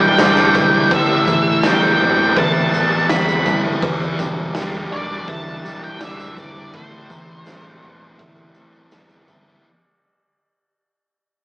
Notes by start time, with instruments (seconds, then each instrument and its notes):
Already playing: fingered electric bass B1, distorted electric guitar B2 E3 G3 D4, clean electric guitar E3 G3 D4 E4
0.01 lead electric guitar G5, tambourine
0.18 fingered electric bass E1, distorted electric guitar D4, clean electric guitar D4, snare, tambourine, crash
0.37 tambourine
0.55 fingered electric bass B1, clean electric guitar G3, distorted electric guitar E4, kick, tambourine
0.91 fingered electric bass A1, distorted electric guitar A2, clean electric guitar A2, lead electric guitar E5, kick, crash
1.09 tambourine
1.27 fingered electric bass A1, clean electric guitar E3, distorted electric guitar E3, kick, tambourine
1.63 fingered electric bass A1, clean electric guitar A3, distorted electric guitar B3, lead electric guitar G5, snare, tambourine, crash
1.82 tambourine
2.01 fingered electric bass E1, distorted electric guitar C4
2.36 fingered electric bass A1, distorted electric guitar E3, clean electric guitar E4, lead electric guitar A5, kick, crash
2.56 tambourine
2.73 fingered electric bass A2, clean electric guitar A3, distorted electric guitar B3, tambourine
2.93 tambourine
3.09 fingered electric bass E2, distorted electric guitar C4, lead electric guitar B5, snare, tambourine, crash
3.28 tambourine
3.46 fingered electric bass G2, clean electric guitar A3, distorted electric guitar E4, kick, tambourine
3.82 fingered electric bass E1, distorted electric guitar E2, clean electric guitar E3, kick, crash
4.01 tambourine
4.19 fingered electric bass E1, distorted electric guitar B2, clean electric guitar G3, kick, tambourine
4.55 fingered electric bass E1, clean electric guitar G3, distorted electric guitar G3, snare, tambourine, crash
4.74 tambourine
4.92 fingered electric bass E1, clean electric guitar D4, distorted electric guitar D4, lead electric guitar D5
5.28 fingered electric bass E1, distorted electric guitar E3, clean electric guitar E4, lead electric guitar A5, kick, crash
5.47 tambourine
5.64 fingered electric bass B1, clean electric guitar G3, distorted electric guitar G3, tambourine
5.84 lead electric guitar G5, tambourine
6.01 fingered electric bass E1, clean electric guitar D4, distorted electric guitar D4, lead electric guitar E5, snare, tambourine, crash
6.20 tambourine
6.37 fingered electric bass E1, clean electric guitar G3, distorted electric guitar E4, lead electric guitar D5, kick, tambourine
6.73 fingered electric bass A1, clean electric guitar A2, distorted electric guitar A2, lead electric guitar C5, kick, tambourine, crash
6.92 tambourine
7.10 fingered electric bass A1, clean electric guitar E3, distorted electric guitar E3, kick, tambourine
7.29 tambourine
7.46 fingered electric bass A1, clean electric guitar A3, distorted electric guitar C4, snare, tambourine, crash
7.82 fingered electric bass E1, distorted electric guitar B3, tambourine
8.19 fingered electric bass A1, distorted electric guitar E3, clean electric guitar E4, kick, crash
8.36 tambourine
8.55 fingered electric bass A2, clean electric guitar A3, distorted electric guitar C4, tambourine
8.73 tambourine
8.91 fingered electric bass E2, distorted electric guitar B3, snare, tambourine, crash
9.10 tambourine
9.28 fingered electric bass G2, clean electric guitar A3, distorted electric guitar E4, kick, tambourine